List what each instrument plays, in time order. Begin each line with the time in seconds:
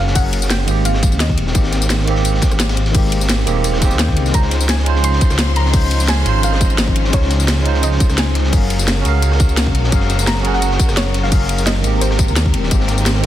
Already playing: detuned saw bass F#1, tine electric piano C#4 F#4 G#4 A#4 F5 F#5
0.07 snare
0.12 tine electric piano C#4 F#4 G#4, synth pluck F#5, kick, closed hi-hat, open hi-hat, tambourine
0.17 tine electric piano A#4 F#5
0.33 closed hi-hat, ride, tambourine
0.42 snare, tambourine
0.50 synth pluck G5, snare, closed hi-hat, ride, tambourine
0.60 cross-stick
0.64 detuned saw bass G#1, tine electric piano D#3 G#3 A#3, closed hi-hat, ride, tambourine
0.69 tine electric piano C4 G4
0.85 synth pluck F5, cross-stick, closed hi-hat, ride, tambourine
0.94 cross-stick, snare
1.03 kick, closed hi-hat, ride, tambourine
1.12 detuned saw bass D#2, tambourine
1.20 synth pluck D#5, snare, closed hi-hat, ride, tambourine
1.29 kick, ride
1.38 detuned saw bass D#1, closed hi-hat, ride
1.47 snare
1.52 detuned saw bass G#1, tine electric piano D#3 G#3 A#3, kick, closed hi-hat, ride, tambourine
1.57 tine electric piano C4 G4
1.63 snare
1.72 snare, closed hi-hat, ride, tambourine
1.81 snare, tambourine
1.89 snare, closed hi-hat, ride, tambourine
1.99 cross-stick, snare
2.04 tine electric piano D#3 G#3 A#3, closed hi-hat, ride
2.09 tine electric piano C4 G4
2.16 snare
2.25 closed hi-hat, ride, tambourine
2.35 snare
2.42 kick, snare, closed hi-hat, ride, tambourine
2.51 detuned saw bass G#1, cross-stick, tambourine
2.59 snare, closed hi-hat, ride, tambourine
2.69 snare, ride
2.77 closed hi-hat
2.86 snare, ride
2.91 tine electric piano D#3 G#3 A#3, kick, closed hi-hat, open hi-hat, tambourine
2.96 tine electric piano C4 G4
3.12 closed hi-hat, ride, tambourine
3.21 snare, tambourine
3.29 snare, closed hi-hat, ride, tambourine
3.39 cross-stick
3.45 detuned saw bass D#1, tine electric piano D#3 G#3 A#3 C4 G4, closed hi-hat, ride, tambourine
3.64 cross-stick, closed hi-hat, ride, tambourine
3.73 cross-stick, snare
3.78 tine electric piano D#3 G#3 A#3, kick, snare, closed hi-hat, ride, tambourine
3.83 tine electric piano C4 G4
3.91 detuned saw bass D#2, snare, tambourine
3.99 synth pluck G5, snare, closed hi-hat, tambourine
4.08 kick, snare
4.17 detuned saw bass C2, closed hi-hat, ride
4.26 snare, tambourine
4.31 detuned saw bass C#2, string section F3 C#4 D#4 C6, tine electric piano G#3 C#4 D#4, synth pluck A#5, kick, closed hi-hat, tambourine
4.35 tine electric piano F4 C5, ride
4.42 snare
4.51 snare, closed hi-hat, ride, tambourine
4.61 snare, tambourine
4.69 synth pluck G#5, snare, closed hi-hat, ride, tambourine
4.78 cross-stick, snare
4.83 tine electric piano G#3 C#4 D#4, closed hi-hat, ride
4.88 tine electric piano F4 C5
4.96 snare
5.04 synth pluck C6, closed hi-hat, ride, tambourine
5.13 snare
5.21 kick, closed hi-hat, ride, tambourine
5.30 detuned saw bass C#2, cross-stick, snare, tambourine
5.39 snare, closed hi-hat, ride, tambourine
5.56 synth pluck A#5, snare, closed hi-hat, ride
5.66 snare
5.70 tine electric piano G#3 C#4 D#4, kick, closed hi-hat, open hi-hat, tambourine
5.75 tine electric piano F4 C5
5.91 closed hi-hat, ride, tambourine
6.00 snare, tambourine
6.08 synth pluck G#5, snare, closed hi-hat, ride, tambourine
6.17 cross-stick
6.23 detuned saw bass G#1, tine electric piano G#3 C#4 D#4, closed hi-hat, ride, tambourine
6.28 tine electric piano F4 C5
6.43 synth pluck F5, cross-stick, closed hi-hat, ride, tambourine
6.52 cross-stick, snare
6.61 kick, closed hi-hat, ride, tambourine
6.70 detuned saw bass G#1, tambourine
6.78 snare, closed hi-hat, ride, tambourine
6.87 kick, ride
6.96 detuned saw bass G#1, closed hi-hat, ride
7.05 snare
7.10 detuned saw bass C#2, tine electric piano G#3 C#4 D#4, synth pluck C#5, kick, closed hi-hat, ride, tambourine
7.15 tine electric piano F4 C#5
7.22 snare
7.30 snare, closed hi-hat, ride, tambourine
7.40 snare, tambourine
7.48 snare, closed hi-hat, ride, tambourine
7.57 cross-stick, snare
7.62 tine electric piano G#3 C#4 D#4, closed hi-hat, ride
7.67 tine electric piano F4 C5
7.74 snare
7.83 synth pluck D#5, closed hi-hat, ride, tambourine
7.92 snare
8.00 kick, closed hi-hat, ride, tambourine
8.10 detuned saw bass C#2, cross-stick, snare, tambourine
8.18 synth pluck G#5, snare, closed hi-hat, ride, tambourine
8.35 snare, closed hi-hat, ride
8.44 snare
8.50 detuned saw bass F#1, string section G#3 F#4 A#4, tine electric piano C#4 F#4 G#4, kick, closed hi-hat, open hi-hat, tambourine
8.54 tine electric piano A#4 F5
8.70 closed hi-hat, ride, tambourine
8.79 snare, tambourine
8.87 snare, closed hi-hat, ride, tambourine
8.97 cross-stick
9.02 detuned saw bass C#2, tine electric piano C#4 F#4 G#4, closed hi-hat, ride, tambourine
9.07 tine electric piano A#4 F5
9.22 cross-stick, closed hi-hat, ride, tambourine
9.32 cross-stick, snare
9.40 kick, closed hi-hat, ride, tambourine
9.49 detuned saw bass C#2, tambourine
9.57 snare, closed hi-hat, ride, tambourine
9.66 kick, ride
9.75 detuned saw bass A#1, closed hi-hat, ride
9.84 snare
9.89 detuned saw bass F#1, tine electric piano C#4 F#4 G#4, kick, closed hi-hat, ride, tambourine
9.94 tine electric piano A#4 F5
10.00 snare
10.09 snare, closed hi-hat, ride, tambourine
10.18 snare, tambourine
10.27 synth pluck A#5, snare, closed hi-hat, ride, tambourine
10.35 cross-stick, snare
10.41 tine electric piano C#4 F#4 G#4, closed hi-hat, ride
10.46 tine electric piano A#4 F#5, synth pluck G#5
10.53 synth pluck F#5, snare
10.62 closed hi-hat, ride, tambourine
10.71 snare
10.79 kick, closed hi-hat, ride, tambourine
10.88 detuned saw bass F#1, cross-stick, snare, tambourine
10.97 synth pluck C#5, snare, closed hi-hat, ride, tambourine
11.14 snare, closed hi-hat, ride
11.23 synth pluck F5, snare
11.29 tine electric piano C#4 F#4 G#4, kick, closed hi-hat, open hi-hat, tambourine
11.33 tine electric piano A#4 F5
11.49 closed hi-hat, ride, tambourine
11.58 snare, tambourine
11.66 synth pluck D#5, snare, closed hi-hat, ride, tambourine
11.76 cross-stick
11.81 detuned saw bass G#1, tine electric piano D#3 G#3 A#3, string section G#3 C4 G4, closed hi-hat, ride, tambourine
11.86 tine electric piano C4 G4
12.01 synth pluck C5, cross-stick, closed hi-hat, ride, tambourine
12.11 cross-stick, snare
12.19 kick, closed hi-hat, ride, tambourine
12.28 detuned saw bass D#2, tambourine
12.36 snare, closed hi-hat, ride, tambourine
12.46 kick, ride
12.54 detuned saw bass D#1, closed hi-hat, ride
12.63 snare
12.68 detuned saw bass G#1, tine electric piano D#3 G#3 A#3, kick, closed hi-hat, ride, tambourine
12.73 tine electric piano C4 G4
12.81 snare
12.88 snare, closed hi-hat, ride, tambourine
12.98 snare, tambourine
13.06 snare, closed hi-hat, ride, tambourine
13.15 cross-stick, snare
13.20 tine electric piano D#3 G#3